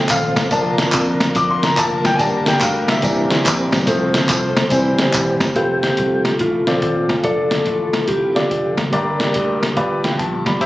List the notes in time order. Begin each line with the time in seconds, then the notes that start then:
Already playing: F3 A3 C4 F4 A4 C5 G5
0.09 D#1 F5, kick, clap, closed hi-hat, tambourine
0.36 E1, kick, snare, closed hi-hat, tambourine
0.51 F1 D3 F3 A#3 D4 F4 A#4 A5, kick, closed hi-hat, tambourine
0.78 snare, closed hi-hat, tambourine
0.92 F2, kick, clap, closed hi-hat, tambourine
1.20 snare, closed hi-hat, tambourine
1.35 F2 D6, kick, closed hi-hat, tambourine
1.51 C6
1.63 A#5, snare, closed hi-hat, tambourine
1.77 F1 A5, kick, clap, closed hi-hat, tambourine
2.05 F#1 G5, kick, snare, closed hi-hat, tambourine
2.15 G1 G3 A#3 D4 G4 G#5, tambourine
2.19 G3 G4 A5, kick, closed hi-hat
2.46 G5, snare, closed hi-hat, tambourine
2.61 D2 F5, kick, clap, closed hi-hat, tambourine
2.88 E5, snare, closed hi-hat, tambourine
3.02 C2 E3 A#3 C4 D4 E4 C5, kick, closed hi-hat, tambourine
3.30 A#1, snare, closed hi-hat, tambourine
3.45 A#1, kick, clap, closed hi-hat, tambourine
3.72 B1, kick, snare, closed hi-hat, tambourine
3.86 C2 F3 A3 C4 F4 A4 C5, kick, closed hi-hat, tambourine
4.14 snare, closed hi-hat, tambourine
4.29 C2, kick, clap, closed hi-hat, tambourine
4.57 snare, closed hi-hat, tambourine
4.70 C2 E3 G3 C4 E4 G4, kick, closed hi-hat, tambourine
4.98 snare, closed hi-hat, tambourine
5.13 D#1, kick, clap, closed hi-hat, tambourine
5.40 E1, kick, snare, closed hi-hat, tambourine
5.55 F1 C3 F3 A3 C4 F4 G4 A4 B4, kick, closed hi-hat
5.62 C5
5.83 snare, closed hi-hat
5.97 C2, kick, closed hi-hat
6.25 snare, closed hi-hat
6.39 A1 F4, kick, closed hi-hat
6.67 A#1 C4 F4 A4 D5, snare, closed hi-hat
6.82 D#1, kick, closed hi-hat
7.09 E1, kick, snare, closed hi-hat
7.23 F1 D3 D4 F4 A4 D5, kick, closed hi-hat
7.51 snare, closed hi-hat
7.66 A1, kick, closed hi-hat
7.93 snare, closed hi-hat
8.08 C2 G4, kick, closed hi-hat
8.35 D4 F4 A4 D5, snare, closed hi-hat
8.51 F1, kick, closed hi-hat
8.77 F#1, kick, snare, closed hi-hat
8.91 G1 G2 G3 A#3 D4 G4 A#4 D5, kick, closed hi-hat
9.20 snare, closed hi-hat
9.34 D2, kick, closed hi-hat
9.63 snare, closed hi-hat
9.76 G1 G2 G3 B3 F4 G4 B4 D5, kick, closed hi-hat
10.03 A1 B4 G5, snare, closed hi-hat
10.19 A#1 A5, kick, closed hi-hat
10.46 B1 D5 B5, kick, snare, closed hi-hat
10.61 C2 C3 E3 E4 G4 C5 E5, kick, closed hi-hat